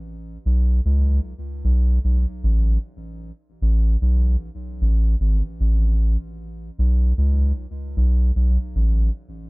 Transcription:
X:1
M:4/4
L:1/16
Q:"Swing 16ths" 1/4=76
K:A
V:1 name="Sub bass" clef=bass
z2 B,,,2 C,,2 z2 B,,,2 B,,, z A,,,2 z2 | z2 A,,,2 B,,,2 z2 A,,,2 G,,, z A,,,3 z | z2 B,,,2 C,,2 z2 B,,,2 B,,, z A,,,2 z2 |]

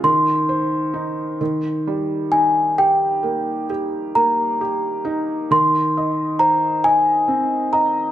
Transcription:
X:1
M:6/8
L:1/8
Q:3/8=44
K:Ab
V:1 name="Celesta"
c'4 z a | g2 z b3 | c'2 b a2 b |]
V:2 name="Felt piano"
E, c E E, G, E | G B, G B, G E | E, e c e C e |]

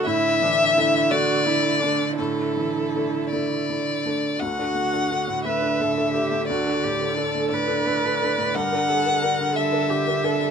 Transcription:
X:1
M:6/8
L:1/16
Q:3/8=58
K:D
V:1 name="Violin"
e6 d6 | A6 d6 | f6 e6 | d6 d6 |
f6 e6 |]
V:2 name="Viola"
E2 D2 E2 F2 E2 D2 | E8- E z3 | F6 B2 A2 G2 | F2 G2 A2 B6 |
_B2 A2 B2 A2 G2 A2 |]
V:3 name="Felt piano"
A,,2 E,2 [A,DA]2 [A,DA]2 A,2 [A,DA]2 | A,,2 E,2 [A,DA]2 [A,DA]2 A,2 [A,DA]2 | D,, [DA] A, [DA] [DA] A,, A, [DA] A,, [DA] [DA] A, | D,, [DA] A,, [DA] [DA] A, A,, [DA] A, [DA] [DA] A,, |
G,, [D_B] G, [DB] [DB] D, G, [DB] D, [DB] [DB] G, |]
V:4 name="Cello" clef=bass
D,12- | D,8- D,2 z2 | D,12- | D,12 |
D,12 |]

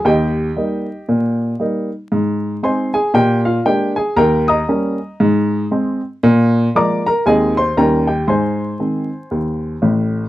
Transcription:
X:1
M:4/4
L:1/8
Q:"Swing" 1/4=117
K:Ab
V:1 name="Upright piano"
[Geg]6 z2 | z2 [cac'] [Aa] [Gg] [Ff] [Gg] [Aa] | [Bgb] [ebe']6 z | z2 [=db=d'] [Bb] [Aea] [cc'] [Bgb] [Gg] |
[cac']6 z2 |]
V:2 name="Upright piano" clef=bass
E,,2 [G,B,E]2 B,,2 [G,B,E]2 | A,,2 [A,CE]2 B,,2 [A,B,=D]2 | E,,2 [G,B,D]2 A,,2 [A,C]2 | B,,2 [F,A,B,]2 [E,,E,A,C]2 [E,,E,G,D]2 |
A,,2 [E,A,C]2 E,,2 [=A,,,=A,,]2 |]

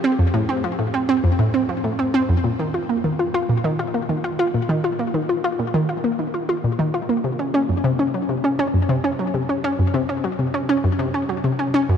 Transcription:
X:1
M:4/4
L:1/16
Q:1/4=100
K:Fmix
V:1 name="Synth arpeggio sound" clef=bass
C F,, A,, C F, A,, C C F,, A,, C F, A,, C C F,, | [K:Bbm] B,, E, F B, E, F F B,, E, F B, E, F F B,, E, | F B, E, F F B,, E, F B, E, F F B,, E, F B, | C, D D G,, C, D G, C, D D G,, C, D G, C, D |
D G,, C, D G, C, D D G,, C, D G, C, D D G,, |]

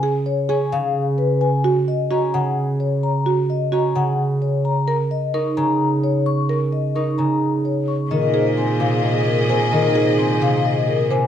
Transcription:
X:1
M:7/8
L:1/8
Q:1/4=130
K:Bbphr
V:1 name="Vibraphone"
z d a f z c a | z e b g z d b | z e b g z d b | z e d' b z d d' |
z e d' b z d d' | [K:Fphr] e c a f e B a | e c a f e B a |]
V:2 name="String section"
z6 z | z6 z | z6 z | z6 z |
z6 z | [K:Fphr] [Ae]6- [Ae]- | [Ae]6 z |]
V:3 name="Alto flute"
z6 z | z6 z | z6 z | z6 z |
z6 z | [K:Fphr] A6- A- | A6 z |]
V:4 name="Marimba"
A z A z4 | G z G z4 | G z G z4 | B z B z4 |
B z B z4 | [K:Fphr] z A z A z2 c | z A z A z2 c |]
V:5 name="Harp" clef=bass
[D,D]2 D D,4 | z2 D D,4- | D,2 D D,4 | z2 E D,4- |
D,2 E D,4 | [K:Fphr] E,2 C C,3 C, | E,2 C C,3 C, |]
V:6 name="Cello" clef=bass
z6 z | z6 z | z6 z | z6 z |
z6 z | [K:Fphr] B,,6- B,,- | B,,6- B,, |]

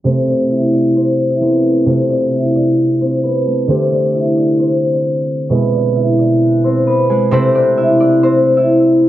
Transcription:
X:1
M:4/4
L:1/16
Q:1/4=132
K:Am
V:1 name="Harp"
[Cc]2 [Dd]2 [Ee]2 [Dd]2 [Cc]3 [Ee]4- [Ee] | [Cc]2 [Dd]2 [Ee]2 [Dd]4 [Cc]2 [B,B]2 [A,A]2 | [Cc]2 [Dd]2 [Ee]2 [Dd]2 [Cc]3 [Dd]4- [Dd] | [B,B]2 [Dd]2 [Ee]2 [Dd]4 [Cc]2 [B,B]2 [^G,^G]2 |
[Cc]2 [Dd]2 [Ee]2 [Dd]2 [Cc]3 [Ee]4- [Ee] |]
V:2 name="Harp"
[C,A,C]12 [A,B,C]4 | [C,A,F]16 | [D,A,G]16 | [B,,^G,E]16 |
[C,A,CE]16 |]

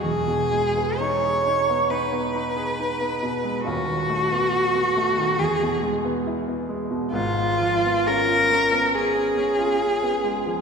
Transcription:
X:1
M:4/4
L:1/16
Q:1/4=68
K:Elyd
V:1 name="Cello"
G4 c4 B8 | F8 G2 z6 | [K:C#mix] E4 A4 G8 |]
V:2 name="Grand piano"
[E,,,E,,] B,, G, B, D G D B, D B, D G D B, B,, G, | [D,,,D,,] D, =A, B, F B, A, D, E,, B,, G, B, E B, G, B,, | [K:C#mix] [G,,,G,,] G, E, B, C E C B, C B, C E C B, G, E, |]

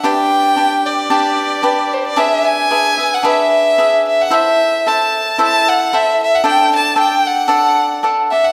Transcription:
X:1
M:2/4
L:1/16
Q:1/4=112
K:G
V:1 name="Violin"
g6 d2- | d6 c d | e2 ^g4- g f | e6 e f |
e4 a4 | a2 f2 e2 e f | g2 a2 g2 f2- | f4 z2 e f |]
V:2 name="Cavaquinho"
[DGBd]4 [DGBd]4 | [DGBd]4 [DGBd]4 | [D^GBe]4 [DGBe]2 [GBe]2 | [D^GBe]4 [DGBe]4 |
[EAce]4 [EAce]4 | [EAce]4 [EAce]4 | [DAdg]4 [DAdg]4 | [DAdf]4 [DAdf]2 [Adf]2 |]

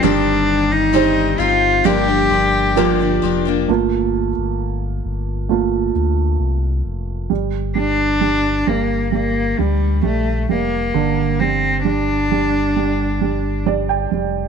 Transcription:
X:1
M:4/4
L:1/16
Q:1/4=66
K:Gm
V:1 name="Cello"
D3 E3 F2 G6 z2 | z16 | z2 D4 B,2 B,2 G,2 A,2 B,2- | B,2 C2 D8 z4 |]
V:2 name="Steel-string acoustic guitar"
[G,,E,G,CG]4 [G,,E,G,CEG]2 [G,CEG]2 [G,,D,F,B,DG] [F,B,DG] [F,B,DG]2 [G,,D,F,B,DG] [F,B,DG] [F,B,DG] [F,B,DG] | z16 | z16 | z16 |]
V:3 name="Upright piano"
z16 | z16 | z16 | z12 d g3 |]
V:4 name="Upright piano" clef=bass
G,4 [EGc]4 G,4 [FGB]4 | [A,B,F]2 z6 [A,B,F]2 z6 | G,2 G,2 G,2 G,2 G,2 G,2 G,2 G,2 | D,2 G,2 G,2 G,2 G,2 G,2 G,2 G,2 |]
V:5 name="Sub bass" clef=bass
G,,,6 G,,,2 G,,,2 G,,,4 F,,,2 | G,,,3 G,,,3 G,,,4 D,,2 C,,2 F,,,2 | G,,,6 G,,,4 D,,2 B,,,2 F,,,2 | G,,,12- G,,,2 F,,,2 |]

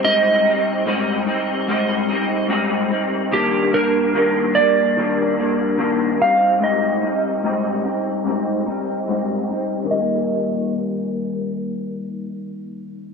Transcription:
X:1
M:4/4
L:1/8
Q:1/4=73
K:Eb
V:1 name="Electric slide guitar"
e6 z2 | G B2 d4 f | e6- e z | e8 |]
V:2 name="Clean electric guitar"
[A,,G,CE] [G,CE] [A,,G,CE] [G,CE] [A,,G,CE] [G,CE] [A,,G,CE] [G,CE] | [E,G,B,D] [G,B,D] [E,G,B,D] [G,B,D] [E,G,B,D] [G,B,D] [E,G,B,D] [G,CE] | [A,,G,CE] [G,CE] [A,,G,CE] [G,CE] [A,,G,CE] [G,CE] [A,,G,CE] [G,CE] | [E,G,B,]8 |]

